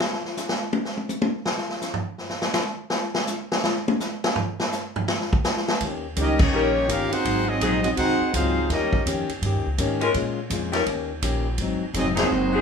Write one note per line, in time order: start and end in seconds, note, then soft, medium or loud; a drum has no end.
0.00 snare loud
0.13 snare soft
0.25 snare soft
0.37 snare soft
0.37 hi-hat pedal medium
0.49 snare loud
0.73 high tom medium
0.85 snare medium
0.97 high tom soft
1.09 hi-hat pedal medium
1.09 high tom medium
1.22 high tom loud
1.46 snare loud
1.58 snare medium
1.69 snare soft
1.82 snare medium
1.82 hi-hat pedal medium
1.94 floor tom medium
2.18 snare soft
2.29 snare medium
2.42 snare loud
2.54 snare loud
2.54 hi-hat pedal medium
2.90 snare loud
3.15 snare loud
3.27 snare soft
3.27 hi-hat pedal medium
3.52 snare loud
3.64 snare loud
3.88 high tom loud
4.00 snare medium
4.00 hi-hat pedal medium
4.24 snare loud
4.36 floor tom loud
4.60 snare loud
4.72 snare soft
4.72 hi-hat pedal medium
4.96 floor tom loud
5.08 snare loud
5.20 snare soft
5.33 kick medium
5.45 snare loud
5.45 hi-hat pedal medium
5.57 snare medium
5.68 snare loud
5.81 6.16 D#2 medium
5.81 6.05 D#3 medium
5.81 6.06 A#3 soft
5.81 6.06 C#4 medium
5.81 6.07 G4 medium
5.81 kick soft
5.81 ride medium
6.16 6.52 C#2 loud
6.16 6.41 D#3 medium
6.16 6.38 G3 medium
6.16 6.41 A#3 medium
6.16 6.38 A#3 medium
6.16 6.42 C#4 medium
6.16 6.38 D#4 medium
6.16 6.41 G4 medium
6.16 kick soft
6.16 hi-hat pedal medium
6.16 ride medium
6.20 6.40 C#4 medium
6.20 6.40 G4 medium
6.20 6.40 A#4 medium
6.20 6.40 D#5 loud
6.39 6.89 G3 medium
6.39 6.89 A#3 medium
6.39 6.91 A#3 medium
6.39 6.89 C#4 medium
6.39 6.91 D#4 medium
6.39 6.91 C#5 loud
6.39 kick loud
6.39 crash medium
6.43 6.90 G4 medium
6.52 6.88 A#1 medium
6.52 6.76 D#3 medium
6.52 6.69 G3 medium
6.52 6.77 A#3 medium
6.52 6.68 C#4 medium
6.52 6.77 C#4 medium
6.52 6.68 D#4 medium
6.52 6.78 G4 medium
6.52 6.69 A#4 loud
6.88 7.10 G1 loud
6.88 7.13 D#3 medium
6.88 7.13 A#3 medium
6.88 7.14 C#4 medium
6.88 7.13 C#4 loud
6.88 7.11 F4 medium
6.88 7.14 G4 medium
6.88 7.13 G4 loud
6.88 7.13 A#4 loud
6.88 7.13 F5 loud
6.88 kick soft
6.88 hi-hat pedal medium
6.88 ride medium
7.10 7.45 C4 medium
7.10 7.46 D#4 medium
7.10 7.48 D#4 loud
7.10 7.47 F#4 medium
7.10 7.47 G#4 medium
7.10 7.48 C5 loud
7.10 7.48 F#5 loud
7.10 muted upright bass stroke soft
7.10 ride medium
7.23 7.60 G#1 medium
7.23 7.48 G#2 soft
7.23 7.49 F#3 medium
7.23 7.50 C4 medium
7.23 7.50 D#4 medium
7.23 kick soft
7.23 ride medium
7.46 7.82 F#3 medium
7.46 7.81 C4 medium
7.46 7.82 C4 medium
7.46 7.82 D#4 medium
7.46 7.82 F#4 medium
7.46 7.81 G#4 medium
7.46 7.81 D#5 loud
7.60 7.96 A#1 loud
7.60 7.86 G#2 medium
7.60 7.77 F#3 medium
7.60 7.86 F#3 medium
7.60 7.77 C4 medium
7.60 7.86 C4 medium
7.60 7.77 D#4 medium
7.60 7.87 D#4 medium
7.60 7.77 G#4 loud
7.60 kick soft
7.60 hi-hat pedal medium
7.60 ride medium
7.82 7.89 F#3 medium
7.82 7.89 C4 medium
7.82 7.90 C4 medium
7.82 7.89 D#4 medium
7.82 7.90 F#4 medium
7.82 7.89 G#4 medium
7.82 7.89 D#5 loud
7.82 ride medium
7.95 8.18 C2 medium
7.95 8.22 G#2 medium
7.95 8.22 F#3 medium
7.95 8.30 C4 medium
7.95 8.31 D#4 loud
7.95 8.31 D#4 medium
7.95 8.30 F#4 medium
7.95 8.31 G#4 medium
7.95 8.31 C5 medium
7.95 8.31 F#5 loud
7.95 kick soft
7.95 ride medium
8.00 8.23 C4 medium
8.00 8.23 D#4 medium
8.20 muted upright bass stroke soft
8.33 8.69 C#2 loud
8.33 8.58 G#2 medium
8.33 8.69 F#3 medium
8.33 8.59 F#3 medium
8.33 8.69 C4 medium
8.33 8.70 D#4 medium
8.33 8.70 F4 medium
8.33 8.70 G#4 medium
8.33 8.70 C5 medium
8.33 8.71 F5 loud
8.33 kick soft
8.33 hi-hat pedal medium
8.33 ride medium
8.37 8.59 C4 medium
8.37 8.59 D#4 medium
8.69 8.91 D#2 medium
8.69 8.94 D#3 medium
8.69 9.04 G3 medium
8.69 9.04 A#3 medium
8.69 8.95 A#3 medium
8.69 8.95 C#4 medium
8.69 9.05 C#4 medium
8.69 9.04 D#4 medium
8.69 9.05 G4 medium
8.69 9.05 A#4 medium
8.69 9.05 D#5 medium
8.69 kick soft
8.69 snare soft
8.69 ride medium
8.74 8.96 G4 medium
8.92 muted upright bass stroke soft
8.92 kick medium
9.05 9.27 F2 loud
9.05 9.30 D#3 medium
9.05 9.30 A#3 medium
9.05 9.31 C#4 medium
9.05 9.31 G4 medium
9.05 kick soft
9.05 hi-hat pedal medium
9.05 ride medium
9.29 muted upright bass stroke soft
9.29 ride medium
9.42 9.56 G2 medium
9.42 9.67 D#3 medium
9.42 9.67 A#3 medium
9.42 9.67 C#4 medium
9.42 kick soft
9.42 ride medium
9.46 9.68 G4 medium
9.54 9.66 D#2 medium
9.66 9.77 C#2 medium
9.78 10.13 G#2 loud
9.78 10.02 D#3 medium
9.78 10.03 A#3 medium
9.78 10.03 C#4 medium
9.78 10.03 G4 medium
9.78 kick soft
9.78 hi-hat pedal medium
9.78 ride medium
10.00 10.10 G#3 loud
10.00 10.10 C#4 medium
10.00 10.09 F4 loud
10.00 10.10 A#4 loud
10.00 ride medium
10.14 10.49 A#2 medium
10.14 10.39 A#2 medium
10.14 10.39 G#3 medium
10.14 10.39 C#4 medium
10.14 10.40 F4 medium
10.14 kick soft
10.14 ride medium
10.50 10.85 F2 loud
10.50 10.75 A#2 medium
10.50 10.75 G#3 medium
10.50 10.75 C#4 medium
10.50 10.76 F4 medium
10.50 kick soft
10.50 hi-hat pedal medium
10.50 ride medium
10.72 10.81 G3 loud
10.72 10.81 C#4 medium
10.72 10.81 D#4 medium
10.72 10.81 A#4 loud
10.72 snare medium
10.72 ride medium
10.86 11.21 D#2 medium
10.86 11.11 D#3 medium
10.86 11.11 A#3 medium
10.86 11.11 C#4 medium
10.86 11.12 G4 medium
10.86 kick soft
10.86 ride medium
11.22 11.57 A#1 loud
11.22 11.47 D#3 medium
11.22 11.47 A#3 medium
11.22 11.47 C#4 medium
11.22 11.47 G4 medium
11.22 kick soft
11.22 hi-hat pedal medium
11.22 ride medium
11.58 11.79 G#1 medium
11.58 11.83 G#2 medium
11.58 11.84 F#3 medium
11.58 11.84 C4 medium
11.58 kick soft
11.58 ride medium
11.63 11.85 D#4 medium
11.81 muted upright bass stroke soft
11.94 12.29 F1 loud
11.94 12.19 G#2 medium
11.94 12.19 F#3 medium
11.94 12.07 F#3 medium
11.94 12.06 C4 medium
11.94 12.20 C4 medium
11.94 12.06 D#4 medium
11.94 12.20 D#4 medium
11.94 12.07 G#4 medium
11.94 kick soft
11.94 hi-hat pedal medium
11.94 ride medium
11.98 12.08 C4 medium
11.98 12.07 F#4 medium
11.98 12.08 D#5 medium
12.15 12.62 D#3 medium
12.15 12.25 F#3 loud
12.15 12.62 F#3 medium
12.15 12.25 C4 medium
12.15 12.62 C4 medium
12.15 12.25 D#4 medium
12.15 12.25 G#4 loud
12.15 snare loud
12.15 ride medium
12.21 12.62 G#3 medium
12.21 12.62 D#4 medium
12.21 12.62 F#4 medium
12.21 12.62 C5 medium
12.30 12.62 F#1 medium
12.30 12.54 G#2 soft
12.30 12.55 F#3 medium
12.30 12.56 C4 medium
12.30 12.56 D#4 medium
12.52 12.61 F#3 loud
12.52 12.62 C4 medium
12.52 12.62 D#4 medium
12.52 12.62 G#4 loud